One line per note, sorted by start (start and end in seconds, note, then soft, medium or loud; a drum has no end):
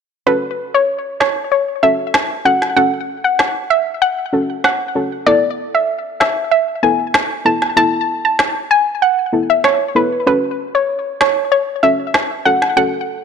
0.26 0.84 C#4 medium
0.26 0.85 F#4 medium
0.26 0.85 A4 loud
0.26 0.41 B4 loud
0.74 0.88 C#5 medium
1.20 1.35 C#5 medium
1.20 cross-stick medium
1.20 snare loud
1.52 1.66 C#5 medium
1.83 1.97 C#4 medium
1.83 1.97 F#4 medium
1.83 1.97 A4 medium
1.83 1.98 E5 medium
2.14 cross-stick medium
2.14 snare loud
2.45 2.59 C#4 medium
2.45 2.60 F#4 medium
2.45 2.60 A4 medium
2.45 2.60 F#5 medium
2.62 snare medium
2.76 3.34 C#4 loud
2.76 3.34 F#4 medium
2.76 3.35 A4 loud
2.76 2.91 F#5 loud
3.24 3.38 F#5 medium
3.39 cross-stick medium
3.39 snare loud
3.70 3.85 E5 medium
4.02 4.47 F#5 loud
4.33 4.47 C#4 medium
4.33 4.47 F#4 medium
4.33 4.47 A4 medium
4.64 5.09 F#5 medium
4.64 cross-stick medium
4.64 snare medium
4.95 5.10 C#4 medium
4.95 5.10 F#4 medium
4.95 5.10 A4 medium
5.26 5.84 B3 medium
5.26 5.85 E4 medium
5.26 5.85 A4 loud
5.26 5.41 D5 loud
5.75 5.88 E5 medium
6.20 6.35 E5 medium
6.20 cross-stick medium
6.20 snare loud
6.51 6.66 E5 medium
6.83 6.97 B3 medium
6.83 6.97 E4 medium
6.83 6.97 A4 medium
6.83 6.98 G#5 medium
7.14 cross-stick medium
7.14 snare loud
7.45 7.59 B3 medium
7.45 7.60 E4 medium
7.45 7.60 A4 medium
7.45 7.60 A5 medium
7.62 snare medium
7.76 8.34 B3 medium
7.76 8.34 E4 medium
7.76 8.35 A4 loud
7.76 7.92 A5 loud
8.25 8.38 A5 medium
8.39 cross-stick medium
8.39 snare loud
8.71 8.85 G#5 medium
9.02 9.17 F#5 medium
9.33 9.47 B3 medium
9.33 9.47 E4 medium
9.33 9.47 A4 medium
9.50 9.63 E5 medium
9.64 9.79 C#5 medium
9.64 cross-stick medium
9.64 snare medium
9.95 10.09 B3 medium
9.95 10.10 E4 medium
9.95 10.10 A4 medium
9.95 10.10 B4 medium
10.27 10.84 C#4 medium
10.27 10.85 F#4 medium
10.27 10.85 A4 loud
10.27 10.42 B4 medium
10.75 10.88 C#5 medium
11.21 11.35 C#5 medium
11.21 cross-stick medium
11.21 snare loud
11.52 11.66 C#5 medium
11.83 11.97 C#4 medium
11.83 11.97 F#4 medium
11.83 11.97 A4 medium
11.83 11.98 E5 medium
12.14 cross-stick medium
12.14 snare loud
12.45 12.60 C#4 medium
12.45 12.60 F#4 medium
12.45 12.60 A4 medium
12.45 12.60 F#5 medium
12.62 snare medium
12.77 13.24 C#4 medium
12.77 13.24 F#4 medium
12.77 13.24 A4 loud
12.77 12.92 F#5 loud